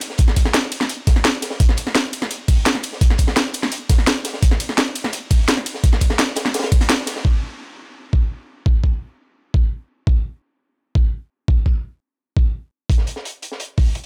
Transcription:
0.01 closed hi-hat, ride
0.10 snare
0.18 kick, closed hi-hat
0.28 snare
0.36 kick, closed hi-hat, ride
0.45 snare
0.54 snare, closed hi-hat
0.63 snare
0.72 closed hi-hat, ride
0.81 snare
0.89 closed hi-hat
1.07 kick, snare, closed hi-hat, ride
1.16 snare
1.24 snare, closed hi-hat
1.42 snare, closed hi-hat, ride
1.50 snare
1.60 kick, closed hi-hat
1.69 snare
1.77 closed hi-hat, ride
1.87 snare
1.95 snare, closed hi-hat
2.13 closed hi-hat, ride
2.22 snare
2.31 closed hi-hat
2.48 kick, closed hi-hat, open hi-hat, ride
2.66 snare, closed hi-hat
2.75 snare, closed hi-hat
2.83 closed hi-hat, ride
2.93 snare
3.01 kick, closed hi-hat
3.10 snare
3.18 kick, closed hi-hat, ride
3.27 snare
3.36 snare, closed hi-hat
3.46 snare
3.54 closed hi-hat, ride
3.63 snare
3.72 closed hi-hat
3.89 kick, snare, closed hi-hat, ride
3.98 snare
4.07 snare, closed hi-hat
4.25 snare, closed hi-hat, ride
4.34 snare
4.42 kick, closed hi-hat
4.51 snare
4.60 closed hi-hat, ride
4.69 snare
4.78 snare, closed hi-hat
4.95 closed hi-hat, ride
5.04 snare
5.13 closed hi-hat
5.30 kick, closed hi-hat, open hi-hat, ride
5.48 snare, closed hi-hat
5.57 snare, closed hi-hat
5.66 closed hi-hat, ride
5.74 snare
5.84 kick, closed hi-hat
5.93 snare
6.01 kick, closed hi-hat, ride
6.10 snare
6.19 snare, closed hi-hat
6.28 snare
6.36 snare, closed hi-hat, ride
6.46 snare
6.54 snare, closed hi-hat
6.59 snare, closed hi-hat
6.63 snare, closed hi-hat
6.72 kick, closed hi-hat, ride
6.81 snare, closed hi-hat
6.89 snare, closed hi-hat
7.07 snare, closed hi-hat, ride
7.16 snare
7.25 kick
8.13 kick
8.66 kick
8.84 kick
9.54 kick
10.07 kick
10.95 kick
11.48 kick
11.66 kick
12.37 kick
12.90 kick, closed hi-hat
12.98 snare
13.07 closed hi-hat
13.16 snare
13.25 closed hi-hat
13.42 closed hi-hat
13.52 snare
13.60 closed hi-hat
13.78 kick, open hi-hat
13.95 closed hi-hat

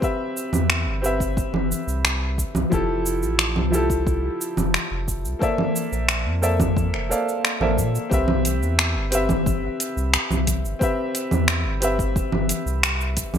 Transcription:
Already playing: B4 E5
0.00 C4 G4 B4 E5, kick, cabasa
0.37 cabasa
0.52 E2, low conga, cabasa
0.70 finger snap, cabasa
0.86 G1
1.02 C4 G4 B4, cabasa
1.06 E5
1.20 kick, cabasa
1.37 kick, cabasa
1.53 G1, low conga
1.72 cabasa
1.87 C2, cabasa
2.05 finger snap, cabasa
2.38 kick, cabasa
2.54 C2, low conga, cabasa
2.70 F1 F3 E4 G4 A4, kick, cabasa
3.06 cabasa
3.22 A1, cabasa
3.39 finger snap, cabasa
3.55 C2, low conga
3.71 F3 E4 G4, cabasa
3.75 A4
3.90 kick, cabasa
4.07 kick, cabasa
4.41 cabasa
4.57 F1, low conga, cabasa
4.74 finger snap, cabasa
4.91 F1
5.08 kick, cabasa
5.25 C2, cabasa
5.39 A#3 A4 C5 D5, kick, cabasa
5.43 E5
5.58 low conga
5.76 cabasa
5.92 A#1, cabasa
6.09 finger snap, cabasa
6.25 F2
6.42 A#3 A4 C5 D5 E5, cabasa
6.60 kick, low conga, cabasa
6.77 kick, cabasa
6.93 F1, finger snap
7.09 A#3 A4 C5 D5 F5, cabasa
7.29 cabasa
7.45 finger snap, cabasa
7.60 A#1 A#3 A4 C5 D5 E5, low conga
7.78 A#2, kick, cabasa
7.95 cabasa
8.09 C2 C4 G4 B4, kick, cabasa
8.14 E5
8.28 low conga
8.45 closed hi-hat, cabasa
8.61 E2, cabasa
8.79 finger snap, cabasa
8.95 G1
9.11 C4 G4 B4, closed hi-hat, cabasa
9.15 E5
9.29 kick, low conga, cabasa
9.46 kick, cabasa
9.80 closed hi-hat, cabasa
9.96 C2, cabasa
10.14 finger snap, cabasa
10.30 C2, low conga, cabasa
10.47 kick, closed hi-hat, cabasa
10.64 G1, cabasa
10.79 C4 G4 B4, kick, cabasa
10.83 E5
11.15 closed hi-hat, cabasa
11.31 E2, low conga, cabasa
11.48 finger snap, cabasa
11.65 G1
11.80 C4 G4 B4 E5, closed hi-hat, cabasa
11.99 kick, cabasa
12.16 kick, cabasa
12.32 G1, low conga
12.49 closed hi-hat, cabasa
12.66 C2, cabasa
12.83 finger snap, cabasa
13.01 cabasa
13.17 kick, closed hi-hat, cabasa
13.33 C2, low conga, cabasa

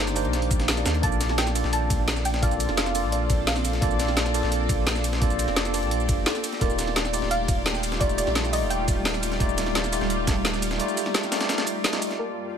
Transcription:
Already playing: G1 D#3 A#3 D4 D#4 G4 C5 D5
0.07 snare, closed hi-hat, shaker
0.15 A#3 D4 D#4 G4 C5, closed hi-hat, open hi-hat, shaker
0.25 C2, closed hi-hat
0.33 A#1, snare, closed hi-hat
0.42 closed hi-hat
0.51 kick, closed hi-hat, shaker
0.60 snare, closed hi-hat
0.68 snare, closed hi-hat, open hi-hat
0.76 A#3 D4 D#4 G4 D5, snare, shaker
0.86 D#2, snare, closed hi-hat, shaker
0.94 closed hi-hat
1.02 A#1 A#3 C4 D4 F4 A4 D5 A5, kick, closed hi-hat
1.12 shaker
1.21 snare, closed hi-hat, ride, shaker
1.29 A5, snare
1.38 G5, snare, closed hi-hat
1.47 snare, shaker
1.55 A#3 D4 F4 A4 D5, closed hi-hat, ride, shaker
1.64 A#1, snare
1.73 A5, closed hi-hat
1.90 kick, closed hi-hat, ride, shaker
2.08 snare, closed hi-hat
2.16 snare, shaker
2.25 G5, closed hi-hat, ride, shaker
2.34 snare, closed hi-hat
2.41 A#3 D4 F4 A4 D5 F5, kick, closed hi-hat
2.51 closed hi-hat, shaker
2.60 closed hi-hat, ride, shaker
2.69 F1, snare
2.77 F5, snare, closed hi-hat
2.86 snare, shaker
2.94 A#3 D4 F4 A4 D5, closed hi-hat, open hi-hat, ride, shaker
3.04 A#1
3.12 D5, closed hi-hat
3.30 kick, closed hi-hat, ride, shaker
3.47 F5, snare, closed hi-hat, open hi-hat
3.56 snare, shaker
3.65 closed hi-hat, ride, shaker
3.73 snare, closed hi-hat
3.81 A#1 A#3 D4 F4 G4 A4 D5, kick, closed hi-hat
3.91 shaker
3.99 snare, closed hi-hat, ride, shaker
4.08 snare
4.17 snare, closed hi-hat
4.26 snare, shaker
4.34 A#3 D4 F4 A4 D5, closed hi-hat, ride, shaker
4.43 A#1, snare
4.52 closed hi-hat
4.69 kick, closed hi-hat, ride, shaker
4.87 snare, closed hi-hat
4.95 snare, shaker
5.04 closed hi-hat, ride, shaker
5.13 snare, closed hi-hat
5.21 A#3 D4 F4 A4 D5, kick, closed hi-hat
5.30 closed hi-hat, shaker
5.39 closed hi-hat, ride, shaker
5.48 F1, snare
5.56 snare, closed hi-hat
5.65 snare, closed hi-hat, shaker
5.73 A#3 D4 F4 A4 D5, closed hi-hat, open hi-hat, ride, shaker
5.83 A#1, closed hi-hat
5.91 closed hi-hat
6.00 shaker
6.09 F1, kick, closed hi-hat, ride, shaker
6.26 A4, snare, closed hi-hat, open hi-hat
6.35 snare, shaker
6.44 closed hi-hat, ride, shaker
6.53 snare, closed hi-hat
6.60 D#1 G3 A#3 D#4 F4 G4 A#4 D5, kick, closed hi-hat
6.70 shaker
6.79 snare, closed hi-hat, ride, shaker
6.87 snare
6.96 D5, snare, closed hi-hat
7.05 snare, shaker
7.13 A3 D#4 F4 G4 D5, closed hi-hat, ride, shaker
7.22 D#1, snare
7.31 F5, closed hi-hat
7.48 kick, closed hi-hat, ride, shaker
7.66 snare, closed hi-hat
7.74 snare, shaker
7.83 closed hi-hat, ride, shaker
7.92 snare, closed hi-hat
7.99 A3 D#4 F4 G4 D5, kick, closed hi-hat
8.09 closed hi-hat, shaker
8.18 D5, closed hi-hat, ride, shaker
8.27 A#1, snare
8.35 snare, closed hi-hat
8.45 snare, shaker
8.52 A3 D#4 F4 G4 D5 D#5, closed hi-hat, open hi-hat, ride, shaker
8.62 D#1
8.70 G5, closed hi-hat
8.88 kick, closed hi-hat, ride, shaker
9.05 snare, closed hi-hat, open hi-hat
9.14 snare, shaker
9.23 closed hi-hat, ride, shaker
9.32 snare, closed hi-hat
9.39 D#1 A3 D#4 F4 G4 D5, kick, closed hi-hat
9.49 shaker
9.58 snare, closed hi-hat, ride, shaker
9.67 snare
9.75 snare, closed hi-hat
9.84 snare, shaker
9.92 A3 D#4 F4 G4 D5, closed hi-hat, ride, shaker
10.01 D#1, snare
10.10 closed hi-hat
10.27 kick, snare, closed hi-hat, ride, shaker
10.45 snare, closed hi-hat
10.54 snare, shaker
10.62 closed hi-hat, ride, shaker
10.71 snare, closed hi-hat
10.78 A3 D#4 F4 G4 D5, closed hi-hat
10.88 closed hi-hat, shaker
10.97 closed hi-hat, ride, shaker
11.06 snare
11.14 snare, closed hi-hat
11.23 snare, closed hi-hat, shaker
11.31 A3 D#4 F4 G4 D5, snare, closed hi-hat, open hi-hat, ride, shaker
11.41 snare, closed hi-hat
11.49 snare, closed hi-hat
11.58 snare, closed hi-hat
11.67 closed hi-hat, ride, shaker
11.84 snare, closed hi-hat
11.92 A3 D#4 F4 G4 D#5, snare, closed hi-hat, shaker
12.02 closed hi-hat, ride, shaker
12.10 snare, closed hi-hat
12.18 G2 A#3 F4 G4 A#4 D5 A5

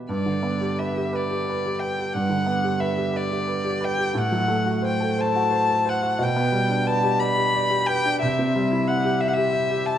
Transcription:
Already playing: B3 G4 B4
0.09 G2 D5
0.26 D3
0.43 B3
0.61 G4
0.79 B4 E5
0.96 G4
1.13 B4 D5
1.31 G4
1.49 B4
1.66 G4
1.79 B4 G5
1.99 G4
2.13 G2 F#5
2.30 D3
2.46 B3
2.64 G4
2.80 B4 E5
2.97 G4
3.14 B4 D5
3.31 G4
3.47 B4
3.64 G4
3.81 B4 G5
3.98 G4
4.14 A2 F#5
4.32 F#3
4.48 A3
4.66 F#4
4.82 C5
4.87 G5
5.00 A4
5.18 C5 A5
5.35 F#4
5.51 C5
5.69 A4
5.86 C5 F#5
6.02 F#4
6.19 B2 G5
6.36 B3
6.52 G3
6.69 D4
6.87 B4 A5
7.03 G4
7.20 D5 B5
7.37 G4
7.55 D5
7.70 G4
7.87 B4 G5
8.05 D4
8.21 C3 E5
8.39 C4
8.55 G3
8.72 E4
8.87 E5 F#5
9.05 G4
9.21 E5
9.28 F#5
9.34 G4 E5
9.53 E5
9.70 G4
9.86 E5 A5

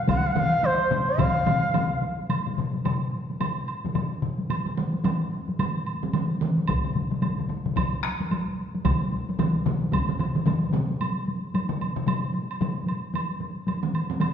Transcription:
0.08 F5, taiko, taiko low-mid, taiko mid, taiko high, high woodblock
0.17 F#5
0.24 F5, taiko high
0.32 F#5, taiko high
0.36 F5, taiko low-mid, taiko mid
0.52 taiko high
0.63 C5, taiko high, high woodblock
0.80 taiko high
0.91 taiko low-mid, taiko mid, taiko high
1.07 taiko high
1.18 F5, taiko, taiko low-mid, taiko mid, taiko high, high woodblock
1.46 taiko low-mid, taiko mid, taiko high, high woodblock
1.63 taiko high
1.74 taiko low-mid, taiko mid, taiko high, high woodblock
1.91 taiko high
2.01 taiko high
2.18 taiko high
2.29 taiko low-mid, taiko high, high woodblock
2.47 taiko low-mid
2.57 taiko low-mid, taiko high
2.74 taiko high
2.85 taiko low-mid, taiko high, high woodblock
3.30 taiko high
3.40 taiko low-mid, taiko high, high woodblock
3.68 high woodblock
3.84 taiko low-mid, taiko high
3.95 taiko low-mid, taiko high, high woodblock
4.22 taiko low-mid
4.39 taiko high
4.50 taiko mid, taiko high, high woodblock
4.66 taiko mid
4.77 taiko mid, taiko high
4.93 taiko high
5.04 taiko mid, taiko high, high woodblock
5.48 taiko high
5.59 taiko mid, taiko high, high woodblock
5.87 high woodblock
6.03 taiko mid, taiko high
6.13 taiko mid, taiko high, high woodblock
6.41 taiko mid
6.57 taiko high
6.67 taiko, taiko low-mid, taiko high, high woodblock
6.84 taiko low-mid
6.95 taiko low-mid, taiko high
7.11 taiko low-mid, taiko high
7.22 taiko low-mid, taiko high, high woodblock
7.39 taiko low-mid
7.49 taiko low-mid
7.66 taiko low-mid, taiko high
7.76 taiko, taiko low-mid, taiko high, high woodblock
8.03 taiko rim, high woodblock
8.20 taiko high
8.31 taiko high, high woodblock
8.74 taiko high
8.85 taiko, taiko low-mid, taiko mid, taiko high, high woodblock
9.13 taiko high
9.29 taiko high
9.39 taiko low-mid, taiko mid, taiko high, high woodblock
9.66 taiko low-mid, taiko mid
9.82 taiko high
9.92 taiko, taiko low-mid, taiko mid, taiko high, high woodblock
10.08 taiko low-mid, taiko mid
10.19 taiko low-mid, taiko mid, high woodblock
10.35 taiko low-mid, taiko mid, taiko high
10.46 taiko low-mid, taiko mid, taiko high, high woodblock
10.73 taiko low-mid, taiko mid
10.90 taiko high
11.01 taiko high, high woodblock
11.17 taiko high
11.28 taiko high
11.44 taiko high
11.54 taiko high, high woodblock
11.69 taiko low-mid, taiko high
11.81 taiko high, high woodblock
11.96 taiko low-mid, taiko high
12.07 taiko low-mid, taiko high, high woodblock
12.24 taiko high
12.34 taiko high
12.50 taiko high, high woodblock
12.61 taiko low-mid, taiko high, high woodblock
12.87 taiko high, high woodblock
13.03 taiko high
13.14 taiko high, high woodblock
13.30 taiko high
13.40 taiko high
13.57 taiko high
13.67 taiko high, high woodblock
13.83 taiko mid
13.94 taiko high, high woodblock
14.10 taiko mid, taiko high
14.20 taiko mid, taiko high, high woodblock

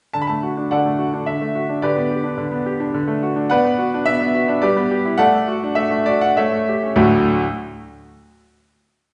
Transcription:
0.13 D3 A5
0.22 B5
0.27 A3 A5
0.43 F#4
0.57 D4
0.71 D3 A4 D5 F#5
0.86 A3
0.99 F#4
1.14 D4
1.26 D3 E5
1.42 A3
1.55 F#4
1.69 D4
1.82 D3 G4 B4 D5
1.96 B3
2.11 G4
2.23 D4
2.38 D3
2.52 B3
2.66 G4
2.80 D4
2.94 D3
3.08 A3
3.23 F#4
3.36 D4
3.50 B3 B4 D5 F#5
3.65 B3
3.78 F#4
3.94 D4
4.06 B3 E5
4.21 B3
4.35 F#4
4.48 D4
4.62 G3 G4 B4 D5
4.76 B3
4.91 G4
5.05 E4
5.18 A3 A4 D5 F#5
5.34 A3
5.48 F#4
5.64 D4
5.75 A3 E5
5.91 A3
6.06 F#4 D5
6.21 D4 F#5
6.37 A3 A4 C#5 E5
6.52 A3
6.69 G4
6.83 C#4
6.96 D2 A2 F#3 A3 D4 F#4 D5

